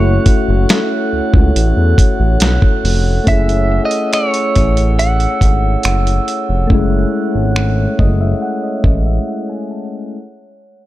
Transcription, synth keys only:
Already playing: A3 C#4 E4 F#4
3.24 A3 C#4
3.29 E4 G#4
6.67 A3 C#4
6.72 G#3 E4
7.99 D#5
8.21 E5
8.42 F#5
8.63 D#5
9.06 E5
9.28 F#5
9.49 G#5
9.71 A5

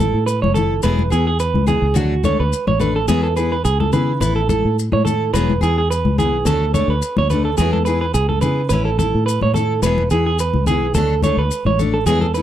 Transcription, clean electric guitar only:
Already playing: A4
0.26 B4
0.42 C#5
0.54 A4
0.83 B4
1.12 G#4
1.27 G#4
1.40 B4
1.68 G#4
1.96 F#4
2.25 C#5
2.40 B4
2.68 C#5
2.81 B4
2.96 A4
3.08 G#4
3.23 A4
3.37 B4
3.52 B4
3.65 G#4
3.80 A4
3.93 B4
4.21 B4
4.36 A4
4.49 A4
4.93 C#5
5.05 A4
5.34 B4
5.63 G#4
5.78 G#4
5.90 B4
6.19 G#4
6.47 A4
6.74 C#5
6.90 B4
7.18 C#5
7.30 B4
7.45 A4
7.58 G#4
7.73 A4
7.85 B4
8.01 B4
8.14 G#4
8.29 A4
8.41 B4
8.69 B4
8.85 A4
8.99 A4
9.26 B4
9.43 C#5
9.54 A4
9.83 B4
10.11 G#4
10.27 G#4
10.40 B4
10.67 G#4
10.95 A4
11.24 C#5
11.39 B4
11.67 C#5
11.94 A4
12.07 G#4
12.21 A4
12.34 B4

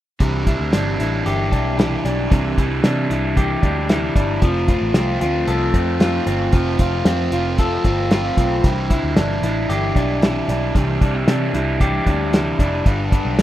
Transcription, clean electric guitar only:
0.20 C3
0.47 E4
0.73 D4
1.00 E4
1.26 G4
1.52 D4
1.78 E4
2.05 D4
2.31 C3
2.58 E4
2.84 D4
3.10 E4
3.37 G4
3.63 D4
3.89 E4
4.16 D4
4.42 F3
4.68 F4
4.95 C4
5.21 F4
5.48 A4
5.74 C4
6.00 F4
6.27 C4
6.53 F3
6.80 F4
7.07 C4
7.33 F4
7.59 A4
7.85 C4
8.12 F4
8.38 C4
8.91 E4
9.17 D4
9.43 E4
9.69 G4
9.96 D4
10.23 E4
10.49 D4
10.75 C3
11.01 D4
11.15 E4
11.28 D4
11.54 E4
11.81 G4
12.07 D4
12.33 E4
12.60 D4
12.86 G2
13.13 D4
13.39 B3

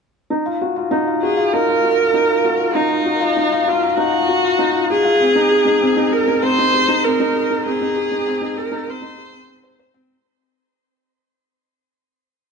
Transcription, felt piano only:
0.30 D#4
0.46 F4
0.61 F#4
0.76 F4
0.91 D#4
1.07 F4
1.23 F#4
1.37 F4
1.53 D#4
1.68 F4
1.84 F#4
1.98 F4
2.14 D#4
2.29 F4
2.45 F#4
2.59 F4
2.75 D#4
2.90 F4
3.06 F#4
3.21 F4
3.36 D#4
3.52 F4
3.67 F#4
3.82 F4
3.97 D#4
4.13 F4
4.28 F#4
4.44 F4
4.59 D#4
4.75 F4
4.90 F#4
5.05 F4
5.20 C4
5.35 D#4
5.51 G#4
5.65 D#4
5.81 C4
5.97 D#4
6.11 G#4
6.28 D#4
6.43 C4
6.58 D#4
6.74 G#4
6.88 D#4
7.04 C4
7.20 D#4
7.35 G#4
7.50 D#4
7.66 C4
7.81 D#4
7.96 G#4
8.12 D#4
8.27 C4
8.42 D#4
8.57 G#4
8.72 D#4
8.87 C4
9.02 D#4
9.18 G#4
9.33 C4
9.48 C4
9.63 C5
9.79 C5
9.94 C4

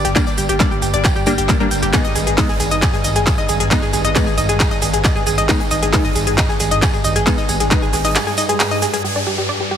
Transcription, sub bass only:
0.05 G1
0.38 G1
0.49 G1
0.71 G1
0.82 G1
0.94 G1
1.27 G1
1.38 G1
1.71 G1
1.83 G1
2.16 G#1
2.27 G#1
2.49 G#1
2.60 G#1
2.71 G#1
3.04 G#1
3.16 G#1
3.49 G#1
3.60 G#1
3.93 G#1
4.05 G#1
4.27 G#1
4.38 G#1
4.49 G#1
4.82 G#1
4.94 G#1
5.27 G#1
5.38 G#1
5.71 G#1
5.83 G#1
6.05 G#1
6.16 G#1
6.27 G#1
6.60 G#1
6.71 G#1
7.04 G#1
7.16 G#1
7.49 G#1
7.60 G#1
7.82 G#1
7.93 G#1
8.05 G#1

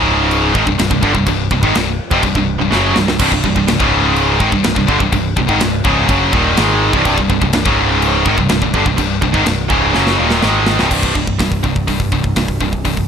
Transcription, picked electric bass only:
Already playing: C#1
0.55 G#1
0.67 C1
0.79 C1
0.90 C1
1.03 G1
1.15 C1
1.27 C1
1.51 C1
1.63 G#1
1.75 C1
2.11 F1
2.23 C1
2.36 C1
2.59 C1
2.71 F#1
2.96 C1
3.10 C1
3.19 C1
3.32 C1
3.44 C1
3.56 C1
3.70 C1
3.80 C#1
4.40 G#1
4.52 C1
4.65 C1
4.76 C1
4.89 G1
5.00 C1
5.12 C1
5.37 C1
5.49 G#1
5.63 C1
5.85 C#1
6.09 F#1
6.33 D#1
6.59 G#1
6.93 C1
7.06 C1
7.18 C1
7.29 C1
7.41 C1
7.55 C1
7.66 C#1
8.26 G#1
8.38 C1
8.50 C1
8.62 C1
8.74 G1
8.86 C1
8.98 C1
9.22 C1
9.34 G#1
9.46 C1
9.70 C#1
9.96 F#1
10.20 D#1
10.44 G#1
10.80 C1
10.91 C1
11.15 C1
11.39 C1
11.64 C1
11.88 C1
12.12 C1
12.37 C1
12.61 C1
12.85 C1

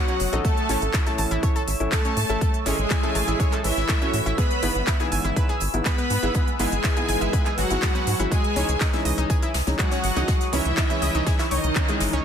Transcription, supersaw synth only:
Already playing: F#3 F#4
0.45 A3 A4
1.92 A3 A4
2.66 G#3 G#4
3.64 E3 E4
4.38 B3 B4
5.86 B3 B4
6.60 G#3 G#4
7.58 F#3 F#4
8.32 G#3 G#4
9.79 F#3 F#4
10.53 E3 E4
11.51 D#3 D#4

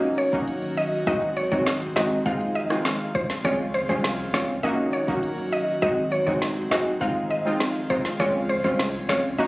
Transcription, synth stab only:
Already playing: A#3 C#4 D#4 F#4
0.33 A#3 C#4 D#4 F#4
1.07 G#3 C4 D#4 F#4
1.51 G#3 C4 D#4 F#4
1.96 G#3 C4 D#4 F#4
2.26 G#3 C4 D#4 F4
2.70 G#3 C4 D#4 F4
3.44 G#3 C4 C#4 F4
3.89 G#3 C4 C#4 F4
4.33 G#3 C4 C#4 F4
4.63 A#3 C#4 D#4 F#4
5.08 A#3 C#4 D#4 F#4
5.82 G#3 C4 D#4 F#4
6.26 G#3 C4 D#4 F#4
6.71 G#3 C4 D#4 F#4
7.01 G#3 C4 D#4 F4
7.45 G#3 C4 D#4 F4
7.90 G#3 C4 D#4 F4
8.20 G#3 C4 C#4 F4
8.64 G#3 C4 C#4 F4
9.09 G#3 C4 C#4 F4
9.38 A#3 C#4 D#4 F#4

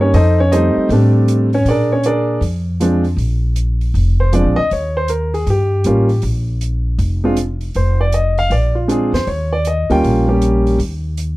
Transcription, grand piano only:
Already playing: G3 A#3 D4 D#4
0.01 C#4 C#5
0.14 D#4 A4 C5 D#5
0.40 C#4 C#5
0.52 G3 A3 C4 D#4 A4 C5 D#5
0.91 G3 A3 C4 D4
1.54 C#4 C#5
1.69 D4 G#4 A#4 D5
1.92 C#4 C#5
2.06 D4 G#4 A#4 D5
2.80 F3 G#3 C4 D4
4.20 C5
4.32 F3 G#3 C4 D4 D5
4.56 D#5
4.73 C#5
4.97 C5
5.10 A#4
5.34 G#4
5.50 G4
5.86 G3 A#3 C#4 F4
7.24 G#3 C4 D4 F4
7.76 C5
8.01 D5
8.14 D#5
8.39 F5
8.52 D5
8.75 F4
8.88 G#3 C4 D4 F4 G#4
9.14 C5
9.28 C#5
9.53 D5
9.67 D#5
9.90 G3 A#3 C#4 F4 G5
10.28 G3 A#3 C#4 G4

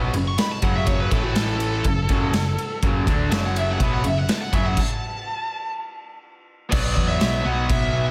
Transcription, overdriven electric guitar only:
Already playing: B2 F#3 B3
0.14 F#2 C#3
0.62 F#2 C#3 F#3
1.12 A2 E3 A3
1.85 F#2 C#3
2.10 F#2 C#3 F#3
2.33 F#2 C#3
2.83 F#2 C#3 F#3
3.07 D3 A3 D4
3.30 F#2 C#3 F#3
3.79 B2 F#3 B3
4.04 F#2 C#3
4.53 F#2 C#3 F#3
6.70 B2 F#3 B3
7.43 B2 F#3 B3

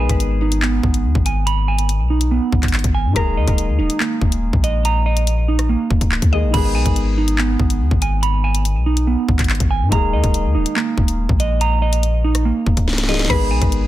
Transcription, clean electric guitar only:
Already playing: B5
0.00 G#5
0.42 D#4
0.62 B3
1.26 G#5
1.47 B5
1.68 G#5
2.10 D#4
2.31 B3
2.94 G#5
3.16 A#5
3.37 D#5
3.79 D#4
4.00 A#3
4.64 D#5
4.85 A#5
5.06 D#5
5.48 D#4
5.69 A#3
6.33 D#5
6.54 B5
6.75 G#5
7.18 D#4
7.38 B3
8.02 G#5
8.23 B5
8.44 G#5
8.86 D#4
9.07 B3
9.71 G#5
9.92 A#5
10.13 D#5
10.55 D#4
10.76 A#3
11.40 D#5
11.61 A#5
11.82 D#5
12.24 D#4
12.45 A#3
13.09 D#5
13.30 B5
13.51 G#5

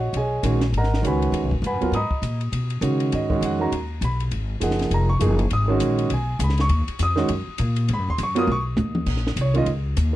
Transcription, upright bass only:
Already playing: A#1
0.13 B1
0.43 A#1
0.72 G#1
1.03 C#2
1.32 D#2
1.43 B1
1.52 G#1
1.62 G2
1.73 F#2
1.82 D#2
1.92 G#2
2.11 muted upright bass stroke
2.22 A#2
2.52 B2
2.81 C#3
3.13 G#2
3.41 F2
3.72 D#2
4.01 B1
4.31 G#1
4.62 F#1
4.91 F1
5.21 F#1
5.51 G#1
5.81 A#1
6.10 B1
6.39 C#2
6.69 D#2
6.88 muted upright bass stroke
6.99 F2
7.29 F#2
7.48 muted upright bass stroke
7.59 A#2
7.89 G#2
7.98 F#2
8.08 D#2
8.18 F#2
8.47 B1
8.78 D#2
9.06 A#1
9.36 C2
9.66 C#2
9.97 D#2

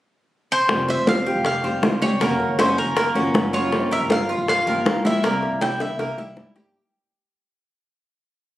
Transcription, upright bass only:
0.69 F1
0.98 F1
1.35 F1
1.64 F1
1.82 C#2
2.20 F#1
2.49 F#1
2.86 F#1
3.15 F#1
3.34 F#1
3.72 G1
4.00 G1
4.38 G1
4.67 G1
4.86 A#1
5.24 C2
5.51 C2
5.89 C2
6.18 C2
6.36 G2

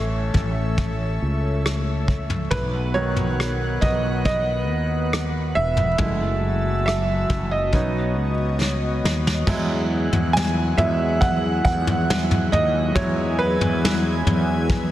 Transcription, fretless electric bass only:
Already playing: A1
0.35 A1
1.22 C#2
2.52 B1
3.82 B1
4.69 D#2
5.56 E1
5.99 F#1
7.30 F#1
7.73 B1
8.17 C#2
9.04 D#2
9.47 E2
10.13 E2
10.78 E2
11.65 E2
12.52 D#2
12.96 E2
13.61 E2
14.26 E2

